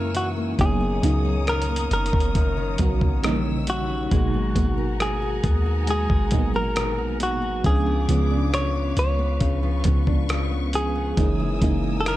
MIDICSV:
0, 0, Header, 1, 7, 480
1, 0, Start_track
1, 0, Key_signature, 5, "minor"
1, 0, Tempo, 882353
1, 319, Time_signature, 4, 2, 24, 8
1, 6619, End_track
2, 0, Start_track
2, 0, Title_t, "String section"
2, 0, Program_c, 0, 48
2, 0, Note_on_c, 0, 70, 75
2, 0, Note_on_c, 0, 80, 70
2, 0, Note_on_c, 0, 85, 71
2, 0, Note_on_c, 0, 88, 85
2, 300, Note_off_c, 0, 80, 0
2, 300, Note_off_c, 0, 88, 0
2, 301, Note_off_c, 0, 70, 0
2, 312, Note_off_c, 0, 85, 0
2, 321, Note_on_c, 0, 87, 85
2, 322, Note_on_c, 0, 82, 68
2, 323, Note_on_c, 0, 73, 78
2, 1746, Note_off_c, 0, 82, 0
2, 1746, Note_off_c, 0, 87, 0
2, 1759, Note_on_c, 0, 76, 67
2, 1761, Note_on_c, 0, 88, 83
2, 2222, Note_off_c, 0, 73, 0
2, 2234, Note_off_c, 0, 76, 0
2, 2235, Note_off_c, 0, 88, 0
2, 2239, Note_on_c, 0, 80, 84
2, 2240, Note_on_c, 0, 78, 71
2, 2240, Note_on_c, 0, 82, 75
2, 4140, Note_off_c, 0, 78, 0
2, 4140, Note_off_c, 0, 80, 0
2, 4140, Note_off_c, 0, 82, 0
2, 4156, Note_on_c, 0, 71, 76
2, 4156, Note_on_c, 0, 77, 69
2, 4157, Note_on_c, 0, 86, 85
2, 5108, Note_off_c, 0, 86, 0
2, 5119, Note_on_c, 0, 85, 85
2, 6058, Note_off_c, 0, 71, 0
2, 6058, Note_off_c, 0, 77, 0
2, 6070, Note_off_c, 0, 85, 0
2, 6081, Note_on_c, 0, 70, 74
2, 6082, Note_on_c, 0, 80, 71
2, 6082, Note_on_c, 0, 87, 73
2, 6082, Note_on_c, 0, 88, 82
2, 6619, Note_off_c, 0, 70, 0
2, 6619, Note_off_c, 0, 80, 0
2, 6619, Note_off_c, 0, 87, 0
2, 6619, Note_off_c, 0, 88, 0
2, 6619, End_track
3, 0, Start_track
3, 0, Title_t, "Clean electric guitar"
3, 0, Program_c, 1, 27
3, 0, Note_on_c, 1, 70, 95
3, 88, Note_off_c, 1, 70, 0
3, 91, Note_on_c, 1, 66, 89
3, 154, Note_off_c, 1, 66, 0
3, 332, Note_on_c, 1, 68, 87
3, 811, Note_off_c, 1, 68, 0
3, 813, Note_on_c, 1, 70, 84
3, 1046, Note_off_c, 1, 70, 0
3, 1052, Note_on_c, 1, 70, 97
3, 2009, Note_off_c, 1, 70, 0
3, 2012, Note_on_c, 1, 66, 92
3, 2729, Note_off_c, 1, 66, 0
3, 2731, Note_on_c, 1, 68, 81
3, 3206, Note_off_c, 1, 68, 0
3, 3213, Note_on_c, 1, 68, 83
3, 3544, Note_off_c, 1, 68, 0
3, 3569, Note_on_c, 1, 70, 88
3, 3902, Note_off_c, 1, 70, 0
3, 3933, Note_on_c, 1, 66, 83
3, 4150, Note_off_c, 1, 66, 0
3, 4169, Note_on_c, 1, 68, 81
3, 4647, Note_off_c, 1, 68, 0
3, 4649, Note_on_c, 1, 73, 86
3, 4884, Note_off_c, 1, 73, 0
3, 4891, Note_on_c, 1, 73, 99
3, 5823, Note_off_c, 1, 73, 0
3, 5850, Note_on_c, 1, 68, 87
3, 6529, Note_off_c, 1, 68, 0
3, 6531, Note_on_c, 1, 69, 62
3, 6564, Note_off_c, 1, 69, 0
3, 6572, Note_on_c, 1, 70, 81
3, 6619, Note_off_c, 1, 70, 0
3, 6619, End_track
4, 0, Start_track
4, 0, Title_t, "Nylon-string guitar"
4, 0, Program_c, 2, 24
4, 0, Note_on_c, 2, 42, 73
4, 0, Note_on_c, 2, 52, 62
4, 0, Note_on_c, 2, 58, 56
4, 0, Note_on_c, 2, 63, 66
4, 71, Note_off_c, 2, 52, 0
4, 77, Note_on_c, 2, 52, 60
4, 195, Note_off_c, 2, 58, 0
4, 197, Note_on_c, 2, 58, 55
4, 312, Note_off_c, 2, 42, 0
4, 318, Note_on_c, 2, 42, 78
4, 366, Note_off_c, 2, 52, 0
4, 439, Note_on_c, 2, 51, 60
4, 557, Note_off_c, 2, 58, 0
4, 559, Note_on_c, 2, 58, 56
4, 677, Note_off_c, 2, 63, 0
4, 679, Note_on_c, 2, 61, 66
4, 797, Note_off_c, 2, 51, 0
4, 799, Note_on_c, 2, 51, 55
4, 917, Note_off_c, 2, 58, 0
4, 919, Note_on_c, 2, 58, 53
4, 1036, Note_off_c, 2, 51, 0
4, 1038, Note_on_c, 2, 51, 61
4, 1157, Note_off_c, 2, 58, 0
4, 1159, Note_on_c, 2, 58, 59
4, 1273, Note_off_c, 2, 42, 0
4, 1279, Note_on_c, 2, 42, 69
4, 1396, Note_off_c, 2, 51, 0
4, 1398, Note_on_c, 2, 51, 57
4, 1516, Note_off_c, 2, 58, 0
4, 1518, Note_on_c, 2, 58, 56
4, 1633, Note_off_c, 2, 61, 0
4, 1639, Note_on_c, 2, 61, 63
4, 1759, Note_off_c, 2, 51, 0
4, 1759, Note_on_c, 2, 51, 77
4, 1807, Note_off_c, 2, 42, 0
4, 1807, Note_off_c, 2, 61, 0
4, 1876, Note_off_c, 2, 58, 0
4, 1878, Note_on_c, 2, 61, 54
4, 1999, Note_on_c, 2, 55, 62
4, 2111, Note_off_c, 2, 61, 0
4, 2118, Note_on_c, 2, 61, 55
4, 2237, Note_off_c, 2, 55, 0
4, 2239, Note_on_c, 2, 56, 77
4, 2287, Note_off_c, 2, 61, 0
4, 2359, Note_on_c, 2, 59, 58
4, 2478, Note_on_c, 2, 66, 57
4, 2598, Note_on_c, 2, 70, 61
4, 2716, Note_off_c, 2, 59, 0
4, 2719, Note_on_c, 2, 59, 52
4, 2833, Note_off_c, 2, 66, 0
4, 2839, Note_on_c, 2, 66, 58
4, 2957, Note_off_c, 2, 59, 0
4, 2959, Note_on_c, 2, 59, 60
4, 3072, Note_off_c, 2, 66, 0
4, 3078, Note_on_c, 2, 66, 56
4, 3196, Note_off_c, 2, 56, 0
4, 3198, Note_on_c, 2, 56, 76
4, 3316, Note_off_c, 2, 59, 0
4, 3318, Note_on_c, 2, 59, 57
4, 3432, Note_off_c, 2, 66, 0
4, 3438, Note_on_c, 2, 66, 59
4, 3551, Note_off_c, 2, 70, 0
4, 3558, Note_on_c, 2, 70, 64
4, 3663, Note_off_c, 2, 51, 0
4, 3674, Note_off_c, 2, 59, 0
4, 3676, Note_on_c, 2, 59, 62
4, 3791, Note_off_c, 2, 66, 0
4, 3798, Note_on_c, 2, 66, 53
4, 3914, Note_off_c, 2, 59, 0
4, 3916, Note_on_c, 2, 59, 59
4, 4029, Note_off_c, 2, 66, 0
4, 4036, Note_on_c, 2, 66, 58
4, 4157, Note_on_c, 2, 49, 83
4, 4205, Note_off_c, 2, 66, 0
4, 4206, Note_off_c, 2, 70, 0
4, 4275, Note_off_c, 2, 56, 0
4, 4278, Note_on_c, 2, 53, 61
4, 4294, Note_off_c, 2, 59, 0
4, 4397, Note_on_c, 2, 59, 56
4, 4518, Note_on_c, 2, 62, 62
4, 4631, Note_off_c, 2, 53, 0
4, 4637, Note_on_c, 2, 53, 58
4, 4754, Note_off_c, 2, 59, 0
4, 4760, Note_on_c, 2, 59, 60
4, 4871, Note_off_c, 2, 53, 0
4, 4878, Note_on_c, 2, 53, 62
4, 4991, Note_off_c, 2, 59, 0
4, 4998, Note_on_c, 2, 59, 58
4, 5112, Note_off_c, 2, 49, 0
4, 5119, Note_on_c, 2, 49, 74
4, 5232, Note_off_c, 2, 53, 0
4, 5238, Note_on_c, 2, 53, 60
4, 5352, Note_off_c, 2, 59, 0
4, 5358, Note_on_c, 2, 59, 58
4, 5471, Note_off_c, 2, 62, 0
4, 5478, Note_on_c, 2, 62, 65
4, 5593, Note_off_c, 2, 53, 0
4, 5599, Note_on_c, 2, 53, 64
4, 5713, Note_off_c, 2, 59, 0
4, 5720, Note_on_c, 2, 59, 57
4, 5834, Note_off_c, 2, 53, 0
4, 5841, Note_on_c, 2, 53, 57
4, 5953, Note_off_c, 2, 59, 0
4, 5960, Note_on_c, 2, 59, 58
4, 6080, Note_on_c, 2, 42, 83
4, 6126, Note_off_c, 2, 62, 0
4, 6127, Note_off_c, 2, 49, 0
4, 6127, Note_off_c, 2, 59, 0
4, 6128, Note_off_c, 2, 53, 0
4, 6200, Note_on_c, 2, 52, 58
4, 6319, Note_on_c, 2, 58, 60
4, 6439, Note_on_c, 2, 63, 66
4, 6552, Note_off_c, 2, 52, 0
4, 6558, Note_on_c, 2, 52, 58
4, 6619, Note_off_c, 2, 42, 0
4, 6619, Note_off_c, 2, 52, 0
4, 6619, Note_off_c, 2, 58, 0
4, 6619, Note_off_c, 2, 63, 0
4, 6619, End_track
5, 0, Start_track
5, 0, Title_t, "FM electric piano"
5, 0, Program_c, 3, 5
5, 0, Control_c, 3, 64, 127
5, 0, Note_on_c, 3, 49, 67
5, 0, Note_on_c, 3, 52, 60
5, 0, Note_on_c, 3, 56, 63
5, 0, Note_on_c, 3, 58, 61
5, 0, Note_on_c, 3, 61, 74
5, 154, Note_off_c, 3, 49, 0
5, 155, Note_off_c, 3, 52, 0
5, 158, Note_off_c, 3, 56, 0
5, 159, Note_off_c, 3, 58, 0
5, 161, Note_off_c, 3, 61, 0
5, 317, Note_on_c, 3, 49, 65
5, 320, Note_on_c, 3, 54, 65
5, 323, Note_on_c, 3, 58, 62
5, 326, Control_c, 3, 64, 0
5, 327, Note_on_c, 3, 59, 65
5, 330, Note_on_c, 3, 63, 75
5, 424, Control_c, 3, 64, 127
5, 503, Note_off_c, 3, 49, 0
5, 505, Note_off_c, 3, 54, 0
5, 506, Note_off_c, 3, 58, 0
5, 508, Note_off_c, 3, 59, 0
5, 510, Note_off_c, 3, 63, 0
5, 557, Note_on_c, 3, 49, 73
5, 560, Note_on_c, 3, 54, 65
5, 564, Note_on_c, 3, 58, 64
5, 567, Note_on_c, 3, 59, 63
5, 570, Note_on_c, 3, 63, 77
5, 1299, Note_off_c, 3, 49, 0
5, 1300, Note_off_c, 3, 54, 0
5, 1302, Note_off_c, 3, 58, 0
5, 1304, Note_off_c, 3, 59, 0
5, 1305, Note_off_c, 3, 63, 0
5, 1515, Note_on_c, 3, 49, 63
5, 1518, Note_on_c, 3, 54, 60
5, 1522, Note_on_c, 3, 58, 59
5, 1525, Note_on_c, 3, 59, 60
5, 1529, Note_on_c, 3, 66, 74
5, 1750, Note_off_c, 3, 49, 0
5, 1756, Note_on_c, 3, 49, 88
5, 1759, Note_off_c, 3, 54, 0
5, 1760, Note_off_c, 3, 58, 0
5, 1760, Note_on_c, 3, 52, 83
5, 1762, Note_off_c, 3, 59, 0
5, 1763, Note_on_c, 3, 55, 83
5, 1764, Note_off_c, 3, 66, 0
5, 1765, Control_c, 3, 64, 0
5, 1766, Note_on_c, 3, 58, 85
5, 1769, Note_on_c, 3, 63, 101
5, 1854, Control_c, 3, 64, 127
5, 2142, Note_off_c, 3, 49, 0
5, 2143, Note_off_c, 3, 52, 0
5, 2145, Note_off_c, 3, 55, 0
5, 2147, Note_off_c, 3, 58, 0
5, 2148, Note_off_c, 3, 63, 0
5, 2238, Note_on_c, 3, 47, 73
5, 2241, Note_on_c, 3, 54, 61
5, 2244, Note_on_c, 3, 56, 63
5, 2246, Control_c, 3, 64, 0
5, 2247, Note_on_c, 3, 58, 59
5, 2251, Note_on_c, 3, 63, 73
5, 2327, Control_c, 3, 64, 127
5, 2424, Note_off_c, 3, 47, 0
5, 2425, Note_off_c, 3, 54, 0
5, 2427, Note_off_c, 3, 56, 0
5, 2428, Note_off_c, 3, 58, 0
5, 2430, Note_off_c, 3, 63, 0
5, 2477, Note_on_c, 3, 47, 69
5, 2480, Note_on_c, 3, 54, 65
5, 2482, Note_on_c, 3, 56, 66
5, 2487, Note_on_c, 3, 58, 66
5, 2489, Note_on_c, 3, 66, 80
5, 3219, Note_off_c, 3, 47, 0
5, 3220, Note_off_c, 3, 54, 0
5, 3221, Note_off_c, 3, 56, 0
5, 3224, Note_off_c, 3, 58, 0
5, 3225, Note_off_c, 3, 66, 0
5, 3437, Note_on_c, 3, 46, 53
5, 3441, Note_on_c, 3, 54, 62
5, 3444, Note_on_c, 3, 56, 63
5, 3446, Note_on_c, 3, 58, 59
5, 3449, Note_on_c, 3, 63, 75
5, 3472, Note_on_c, 3, 59, 70
5, 3473, Note_off_c, 3, 46, 0
5, 3995, Note_off_c, 3, 54, 0
5, 3997, Note_off_c, 3, 56, 0
5, 3998, Note_off_c, 3, 58, 0
5, 3999, Note_off_c, 3, 63, 0
5, 4011, Note_off_c, 3, 59, 0
5, 4159, Note_on_c, 3, 49, 68
5, 4162, Note_on_c, 3, 53, 65
5, 4164, Note_on_c, 3, 56, 66
5, 4167, Control_c, 3, 64, 0
5, 4168, Note_on_c, 3, 59, 61
5, 4171, Note_on_c, 3, 62, 76
5, 4272, Control_c, 3, 64, 127
5, 4344, Note_off_c, 3, 49, 0
5, 4346, Note_off_c, 3, 53, 0
5, 4347, Note_off_c, 3, 56, 0
5, 4349, Note_off_c, 3, 59, 0
5, 4350, Note_off_c, 3, 62, 0
5, 4399, Note_on_c, 3, 49, 74
5, 4401, Note_on_c, 3, 53, 66
5, 4405, Note_on_c, 3, 56, 66
5, 4407, Note_on_c, 3, 59, 65
5, 4411, Note_on_c, 3, 61, 76
5, 5140, Note_off_c, 3, 49, 0
5, 5141, Note_off_c, 3, 53, 0
5, 5143, Note_off_c, 3, 56, 0
5, 5144, Note_off_c, 3, 59, 0
5, 5146, Note_off_c, 3, 61, 0
5, 5355, Note_on_c, 3, 49, 68
5, 5359, Note_on_c, 3, 53, 60
5, 5362, Note_on_c, 3, 56, 61
5, 5366, Note_on_c, 3, 59, 60
5, 5368, Note_on_c, 3, 61, 71
5, 5913, Note_off_c, 3, 49, 0
5, 5914, Note_off_c, 3, 53, 0
5, 5916, Note_off_c, 3, 56, 0
5, 5918, Note_off_c, 3, 59, 0
5, 5919, Note_off_c, 3, 61, 0
5, 6078, Note_on_c, 3, 49, 69
5, 6080, Note_on_c, 3, 52, 63
5, 6083, Note_on_c, 3, 56, 66
5, 6087, Control_c, 3, 64, 0
5, 6088, Note_on_c, 3, 58, 65
5, 6090, Note_on_c, 3, 63, 74
5, 6177, Control_c, 3, 64, 127
5, 6264, Note_off_c, 3, 49, 0
5, 6265, Note_off_c, 3, 52, 0
5, 6266, Note_off_c, 3, 56, 0
5, 6269, Note_off_c, 3, 58, 0
5, 6270, Note_off_c, 3, 63, 0
5, 6320, Note_on_c, 3, 49, 73
5, 6323, Note_on_c, 3, 52, 65
5, 6325, Note_on_c, 3, 56, 65
5, 6329, Note_on_c, 3, 58, 66
5, 6332, Note_on_c, 3, 63, 82
5, 6619, Note_off_c, 3, 49, 0
5, 6619, Note_off_c, 3, 52, 0
5, 6619, Note_off_c, 3, 56, 0
5, 6619, Note_off_c, 3, 58, 0
5, 6619, Note_off_c, 3, 63, 0
5, 6619, End_track
6, 0, Start_track
6, 0, Title_t, "808-style bass"
6, 0, Program_c, 4, 38
6, 0, Note_on_c, 4, 42, 96
6, 298, Note_off_c, 4, 42, 0
6, 320, Note_on_c, 4, 30, 98
6, 550, Note_off_c, 4, 30, 0
6, 560, Note_on_c, 4, 37, 92
6, 1021, Note_off_c, 4, 37, 0
6, 1040, Note_on_c, 4, 30, 102
6, 1155, Note_off_c, 4, 30, 0
6, 1160, Note_on_c, 4, 30, 95
6, 1505, Note_off_c, 4, 30, 0
6, 1520, Note_on_c, 4, 34, 103
6, 2218, Note_off_c, 4, 34, 0
6, 2239, Note_on_c, 4, 32, 106
6, 2469, Note_off_c, 4, 32, 0
6, 2479, Note_on_c, 4, 32, 94
6, 2940, Note_off_c, 4, 32, 0
6, 2959, Note_on_c, 4, 39, 96
6, 3304, Note_off_c, 4, 39, 0
6, 3318, Note_on_c, 4, 32, 94
6, 3800, Note_on_c, 4, 34, 91
6, 3808, Note_off_c, 4, 32, 0
6, 3979, Note_on_c, 4, 32, 95
6, 3987, Note_off_c, 4, 34, 0
6, 4150, Note_off_c, 4, 32, 0
6, 4158, Note_on_c, 4, 37, 106
6, 4389, Note_off_c, 4, 37, 0
6, 4399, Note_on_c, 4, 37, 103
6, 4860, Note_off_c, 4, 37, 0
6, 4879, Note_on_c, 4, 37, 102
6, 5109, Note_off_c, 4, 37, 0
6, 5119, Note_on_c, 4, 37, 106
6, 5349, Note_off_c, 4, 37, 0
6, 5360, Note_on_c, 4, 37, 108
6, 6058, Note_off_c, 4, 37, 0
6, 6079, Note_on_c, 4, 30, 105
6, 6309, Note_off_c, 4, 30, 0
6, 6319, Note_on_c, 4, 30, 101
6, 6619, Note_off_c, 4, 30, 0
6, 6619, End_track
7, 0, Start_track
7, 0, Title_t, "Drums"
7, 79, Note_on_c, 9, 42, 74
7, 134, Note_off_c, 9, 42, 0
7, 320, Note_on_c, 9, 36, 98
7, 320, Note_on_c, 9, 42, 61
7, 374, Note_off_c, 9, 36, 0
7, 374, Note_off_c, 9, 42, 0
7, 562, Note_on_c, 9, 42, 79
7, 617, Note_off_c, 9, 42, 0
7, 801, Note_on_c, 9, 42, 41
7, 805, Note_on_c, 9, 37, 99
7, 855, Note_off_c, 9, 42, 0
7, 860, Note_off_c, 9, 37, 0
7, 879, Note_on_c, 9, 42, 57
7, 933, Note_off_c, 9, 42, 0
7, 959, Note_on_c, 9, 42, 75
7, 1013, Note_off_c, 9, 42, 0
7, 1040, Note_on_c, 9, 42, 53
7, 1094, Note_off_c, 9, 42, 0
7, 1120, Note_on_c, 9, 42, 54
7, 1159, Note_on_c, 9, 36, 89
7, 1174, Note_off_c, 9, 42, 0
7, 1199, Note_on_c, 9, 42, 48
7, 1214, Note_off_c, 9, 36, 0
7, 1253, Note_off_c, 9, 42, 0
7, 1278, Note_on_c, 9, 42, 63
7, 1280, Note_on_c, 9, 36, 86
7, 1333, Note_off_c, 9, 42, 0
7, 1334, Note_off_c, 9, 36, 0
7, 1514, Note_on_c, 9, 42, 76
7, 1520, Note_on_c, 9, 36, 89
7, 1568, Note_off_c, 9, 42, 0
7, 1574, Note_off_c, 9, 36, 0
7, 1639, Note_on_c, 9, 36, 93
7, 1694, Note_off_c, 9, 36, 0
7, 1760, Note_on_c, 9, 42, 66
7, 1765, Note_on_c, 9, 37, 110
7, 1814, Note_off_c, 9, 42, 0
7, 1819, Note_off_c, 9, 37, 0
7, 1997, Note_on_c, 9, 42, 80
7, 2051, Note_off_c, 9, 42, 0
7, 2238, Note_on_c, 9, 42, 61
7, 2239, Note_on_c, 9, 36, 97
7, 2292, Note_off_c, 9, 42, 0
7, 2293, Note_off_c, 9, 36, 0
7, 2478, Note_on_c, 9, 36, 88
7, 2479, Note_on_c, 9, 42, 77
7, 2533, Note_off_c, 9, 36, 0
7, 2534, Note_off_c, 9, 42, 0
7, 2721, Note_on_c, 9, 37, 102
7, 2722, Note_on_c, 9, 42, 71
7, 2776, Note_off_c, 9, 37, 0
7, 2776, Note_off_c, 9, 42, 0
7, 2957, Note_on_c, 9, 42, 61
7, 2958, Note_on_c, 9, 36, 90
7, 3011, Note_off_c, 9, 42, 0
7, 3013, Note_off_c, 9, 36, 0
7, 3195, Note_on_c, 9, 42, 63
7, 3249, Note_off_c, 9, 42, 0
7, 3318, Note_on_c, 9, 36, 84
7, 3372, Note_off_c, 9, 36, 0
7, 3431, Note_on_c, 9, 42, 75
7, 3438, Note_on_c, 9, 36, 87
7, 3486, Note_off_c, 9, 42, 0
7, 3492, Note_off_c, 9, 36, 0
7, 3677, Note_on_c, 9, 42, 67
7, 3682, Note_on_c, 9, 37, 109
7, 3731, Note_off_c, 9, 42, 0
7, 3736, Note_off_c, 9, 37, 0
7, 3917, Note_on_c, 9, 42, 78
7, 3971, Note_off_c, 9, 42, 0
7, 4158, Note_on_c, 9, 36, 94
7, 4158, Note_on_c, 9, 42, 61
7, 4213, Note_off_c, 9, 36, 0
7, 4213, Note_off_c, 9, 42, 0
7, 4400, Note_on_c, 9, 42, 78
7, 4454, Note_off_c, 9, 42, 0
7, 4644, Note_on_c, 9, 37, 103
7, 4644, Note_on_c, 9, 42, 65
7, 4698, Note_off_c, 9, 37, 0
7, 4698, Note_off_c, 9, 42, 0
7, 4878, Note_on_c, 9, 42, 62
7, 4932, Note_off_c, 9, 42, 0
7, 5116, Note_on_c, 9, 42, 62
7, 5118, Note_on_c, 9, 36, 82
7, 5171, Note_off_c, 9, 42, 0
7, 5173, Note_off_c, 9, 36, 0
7, 5352, Note_on_c, 9, 42, 79
7, 5359, Note_on_c, 9, 36, 88
7, 5407, Note_off_c, 9, 42, 0
7, 5413, Note_off_c, 9, 36, 0
7, 5479, Note_on_c, 9, 36, 87
7, 5533, Note_off_c, 9, 36, 0
7, 5598, Note_on_c, 9, 42, 68
7, 5603, Note_on_c, 9, 37, 111
7, 5653, Note_off_c, 9, 42, 0
7, 5658, Note_off_c, 9, 37, 0
7, 5838, Note_on_c, 9, 42, 74
7, 5892, Note_off_c, 9, 42, 0
7, 6078, Note_on_c, 9, 42, 65
7, 6079, Note_on_c, 9, 36, 98
7, 6133, Note_off_c, 9, 36, 0
7, 6133, Note_off_c, 9, 42, 0
7, 6319, Note_on_c, 9, 36, 90
7, 6320, Note_on_c, 9, 42, 75
7, 6373, Note_off_c, 9, 36, 0
7, 6374, Note_off_c, 9, 42, 0
7, 6562, Note_on_c, 9, 37, 107
7, 6562, Note_on_c, 9, 42, 65
7, 6617, Note_off_c, 9, 37, 0
7, 6617, Note_off_c, 9, 42, 0
7, 6619, End_track
0, 0, End_of_file